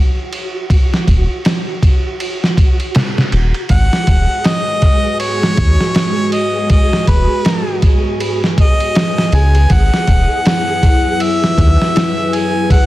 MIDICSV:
0, 0, Header, 1, 6, 480
1, 0, Start_track
1, 0, Key_signature, 5, "minor"
1, 0, Tempo, 750000
1, 449, Time_signature, 4, 2, 24, 8
1, 8230, End_track
2, 0, Start_track
2, 0, Title_t, "Harmonica"
2, 0, Program_c, 0, 22
2, 2373, Note_on_c, 0, 78, 102
2, 2852, Note_on_c, 0, 75, 102
2, 2861, Note_off_c, 0, 78, 0
2, 3323, Note_off_c, 0, 75, 0
2, 3327, Note_on_c, 0, 73, 97
2, 4022, Note_off_c, 0, 73, 0
2, 4048, Note_on_c, 0, 75, 84
2, 4272, Note_off_c, 0, 75, 0
2, 4293, Note_on_c, 0, 75, 88
2, 4514, Note_off_c, 0, 75, 0
2, 4531, Note_on_c, 0, 71, 85
2, 4984, Note_off_c, 0, 71, 0
2, 5509, Note_on_c, 0, 75, 110
2, 5984, Note_on_c, 0, 80, 103
2, 5994, Note_off_c, 0, 75, 0
2, 6225, Note_on_c, 0, 78, 104
2, 6234, Note_off_c, 0, 80, 0
2, 6697, Note_off_c, 0, 78, 0
2, 6705, Note_on_c, 0, 78, 107
2, 7186, Note_on_c, 0, 76, 112
2, 7195, Note_off_c, 0, 78, 0
2, 7904, Note_on_c, 0, 80, 102
2, 7914, Note_off_c, 0, 76, 0
2, 8133, Note_off_c, 0, 80, 0
2, 8137, Note_on_c, 0, 78, 101
2, 8230, Note_off_c, 0, 78, 0
2, 8230, End_track
3, 0, Start_track
3, 0, Title_t, "Synth texture"
3, 0, Program_c, 1, 99
3, 0, Note_on_c, 1, 66, 86
3, 2364, Note_on_c, 1, 68, 84
3, 2377, Note_off_c, 1, 66, 0
3, 8230, Note_off_c, 1, 68, 0
3, 8230, End_track
4, 0, Start_track
4, 0, Title_t, "Analog synth pad"
4, 0, Program_c, 2, 89
4, 2365, Note_on_c, 2, 66, 68
4, 2365, Note_on_c, 2, 71, 90
4, 2366, Note_on_c, 2, 56, 83
4, 6181, Note_off_c, 2, 66, 0
4, 6182, Note_off_c, 2, 56, 0
4, 6209, Note_on_c, 2, 64, 75
4, 6210, Note_on_c, 2, 54, 76
4, 8230, Note_off_c, 2, 54, 0
4, 8230, Note_off_c, 2, 64, 0
4, 8230, Note_off_c, 2, 71, 0
4, 8230, End_track
5, 0, Start_track
5, 0, Title_t, "Analog synth bass"
5, 0, Program_c, 3, 38
5, 687, Note_on_c, 3, 27, 76
5, 814, Note_off_c, 3, 27, 0
5, 2130, Note_on_c, 3, 27, 97
5, 2256, Note_off_c, 3, 27, 0
5, 2366, Note_on_c, 3, 32, 91
5, 2493, Note_off_c, 3, 32, 0
5, 2608, Note_on_c, 3, 27, 85
5, 2734, Note_off_c, 3, 27, 0
5, 3568, Note_on_c, 3, 39, 92
5, 3695, Note_off_c, 3, 39, 0
5, 4530, Note_on_c, 3, 27, 75
5, 4655, Note_off_c, 3, 27, 0
5, 5968, Note_on_c, 3, 37, 79
5, 6185, Note_off_c, 3, 37, 0
5, 6208, Note_on_c, 3, 32, 104
5, 6334, Note_off_c, 3, 32, 0
5, 6449, Note_on_c, 3, 27, 82
5, 6575, Note_off_c, 3, 27, 0
5, 7409, Note_on_c, 3, 39, 92
5, 7535, Note_off_c, 3, 39, 0
5, 8230, End_track
6, 0, Start_track
6, 0, Title_t, "Drums"
6, 208, Note_on_c, 9, 51, 67
6, 272, Note_off_c, 9, 51, 0
6, 448, Note_on_c, 9, 36, 106
6, 451, Note_on_c, 9, 51, 83
6, 512, Note_off_c, 9, 36, 0
6, 515, Note_off_c, 9, 51, 0
6, 599, Note_on_c, 9, 38, 46
6, 663, Note_off_c, 9, 38, 0
6, 687, Note_on_c, 9, 36, 87
6, 690, Note_on_c, 9, 51, 62
6, 751, Note_off_c, 9, 36, 0
6, 754, Note_off_c, 9, 51, 0
6, 928, Note_on_c, 9, 51, 80
6, 934, Note_on_c, 9, 38, 97
6, 992, Note_off_c, 9, 51, 0
6, 998, Note_off_c, 9, 38, 0
6, 1168, Note_on_c, 9, 36, 83
6, 1170, Note_on_c, 9, 51, 66
6, 1232, Note_off_c, 9, 36, 0
6, 1234, Note_off_c, 9, 51, 0
6, 1409, Note_on_c, 9, 51, 82
6, 1473, Note_off_c, 9, 51, 0
6, 1560, Note_on_c, 9, 38, 39
6, 1624, Note_off_c, 9, 38, 0
6, 1648, Note_on_c, 9, 36, 86
6, 1650, Note_on_c, 9, 51, 65
6, 1712, Note_off_c, 9, 36, 0
6, 1714, Note_off_c, 9, 51, 0
6, 1791, Note_on_c, 9, 51, 38
6, 1855, Note_off_c, 9, 51, 0
6, 1886, Note_on_c, 9, 51, 89
6, 1893, Note_on_c, 9, 38, 113
6, 1950, Note_off_c, 9, 51, 0
6, 1957, Note_off_c, 9, 38, 0
6, 2036, Note_on_c, 9, 38, 52
6, 2100, Note_off_c, 9, 38, 0
6, 2127, Note_on_c, 9, 51, 62
6, 2191, Note_off_c, 9, 51, 0
6, 2268, Note_on_c, 9, 51, 44
6, 2332, Note_off_c, 9, 51, 0
6, 2362, Note_on_c, 9, 51, 88
6, 2366, Note_on_c, 9, 36, 102
6, 2426, Note_off_c, 9, 51, 0
6, 2430, Note_off_c, 9, 36, 0
6, 2515, Note_on_c, 9, 38, 52
6, 2579, Note_off_c, 9, 38, 0
6, 2605, Note_on_c, 9, 51, 67
6, 2607, Note_on_c, 9, 36, 88
6, 2669, Note_off_c, 9, 51, 0
6, 2671, Note_off_c, 9, 36, 0
6, 2845, Note_on_c, 9, 51, 77
6, 2851, Note_on_c, 9, 38, 100
6, 2909, Note_off_c, 9, 51, 0
6, 2915, Note_off_c, 9, 38, 0
6, 3084, Note_on_c, 9, 51, 63
6, 3086, Note_on_c, 9, 36, 81
6, 3148, Note_off_c, 9, 51, 0
6, 3150, Note_off_c, 9, 36, 0
6, 3326, Note_on_c, 9, 51, 83
6, 3390, Note_off_c, 9, 51, 0
6, 3477, Note_on_c, 9, 38, 47
6, 3541, Note_off_c, 9, 38, 0
6, 3567, Note_on_c, 9, 51, 68
6, 3568, Note_on_c, 9, 36, 95
6, 3631, Note_off_c, 9, 51, 0
6, 3632, Note_off_c, 9, 36, 0
6, 3715, Note_on_c, 9, 38, 48
6, 3779, Note_off_c, 9, 38, 0
6, 3806, Note_on_c, 9, 51, 89
6, 3812, Note_on_c, 9, 38, 113
6, 3870, Note_off_c, 9, 51, 0
6, 3876, Note_off_c, 9, 38, 0
6, 4046, Note_on_c, 9, 51, 67
6, 4110, Note_off_c, 9, 51, 0
6, 4285, Note_on_c, 9, 51, 85
6, 4288, Note_on_c, 9, 36, 111
6, 4349, Note_off_c, 9, 51, 0
6, 4352, Note_off_c, 9, 36, 0
6, 4436, Note_on_c, 9, 38, 46
6, 4500, Note_off_c, 9, 38, 0
6, 4527, Note_on_c, 9, 51, 64
6, 4528, Note_on_c, 9, 36, 88
6, 4591, Note_off_c, 9, 51, 0
6, 4592, Note_off_c, 9, 36, 0
6, 4767, Note_on_c, 9, 51, 78
6, 4773, Note_on_c, 9, 38, 107
6, 4831, Note_off_c, 9, 51, 0
6, 4837, Note_off_c, 9, 38, 0
6, 5007, Note_on_c, 9, 51, 64
6, 5008, Note_on_c, 9, 36, 89
6, 5071, Note_off_c, 9, 51, 0
6, 5072, Note_off_c, 9, 36, 0
6, 5251, Note_on_c, 9, 51, 80
6, 5315, Note_off_c, 9, 51, 0
6, 5400, Note_on_c, 9, 38, 37
6, 5464, Note_off_c, 9, 38, 0
6, 5489, Note_on_c, 9, 36, 90
6, 5490, Note_on_c, 9, 51, 65
6, 5553, Note_off_c, 9, 36, 0
6, 5554, Note_off_c, 9, 51, 0
6, 5634, Note_on_c, 9, 51, 42
6, 5698, Note_off_c, 9, 51, 0
6, 5730, Note_on_c, 9, 51, 83
6, 5737, Note_on_c, 9, 38, 119
6, 5794, Note_off_c, 9, 51, 0
6, 5801, Note_off_c, 9, 38, 0
6, 5877, Note_on_c, 9, 38, 55
6, 5941, Note_off_c, 9, 38, 0
6, 5967, Note_on_c, 9, 51, 66
6, 6031, Note_off_c, 9, 51, 0
6, 6111, Note_on_c, 9, 51, 45
6, 6175, Note_off_c, 9, 51, 0
6, 6207, Note_on_c, 9, 51, 90
6, 6209, Note_on_c, 9, 36, 114
6, 6271, Note_off_c, 9, 51, 0
6, 6273, Note_off_c, 9, 36, 0
6, 6359, Note_on_c, 9, 38, 50
6, 6423, Note_off_c, 9, 38, 0
6, 6448, Note_on_c, 9, 51, 61
6, 6449, Note_on_c, 9, 36, 88
6, 6512, Note_off_c, 9, 51, 0
6, 6513, Note_off_c, 9, 36, 0
6, 6691, Note_on_c, 9, 51, 86
6, 6698, Note_on_c, 9, 38, 104
6, 6755, Note_off_c, 9, 51, 0
6, 6762, Note_off_c, 9, 38, 0
6, 6929, Note_on_c, 9, 36, 89
6, 6932, Note_on_c, 9, 51, 61
6, 6993, Note_off_c, 9, 36, 0
6, 6996, Note_off_c, 9, 51, 0
6, 7169, Note_on_c, 9, 51, 84
6, 7233, Note_off_c, 9, 51, 0
6, 7320, Note_on_c, 9, 38, 47
6, 7384, Note_off_c, 9, 38, 0
6, 7409, Note_on_c, 9, 36, 92
6, 7413, Note_on_c, 9, 51, 67
6, 7473, Note_off_c, 9, 36, 0
6, 7477, Note_off_c, 9, 51, 0
6, 7562, Note_on_c, 9, 38, 50
6, 7626, Note_off_c, 9, 38, 0
6, 7653, Note_on_c, 9, 51, 90
6, 7660, Note_on_c, 9, 38, 117
6, 7717, Note_off_c, 9, 51, 0
6, 7724, Note_off_c, 9, 38, 0
6, 7893, Note_on_c, 9, 51, 68
6, 7957, Note_off_c, 9, 51, 0
6, 8129, Note_on_c, 9, 36, 110
6, 8131, Note_on_c, 9, 51, 88
6, 8193, Note_off_c, 9, 36, 0
6, 8195, Note_off_c, 9, 51, 0
6, 8230, End_track
0, 0, End_of_file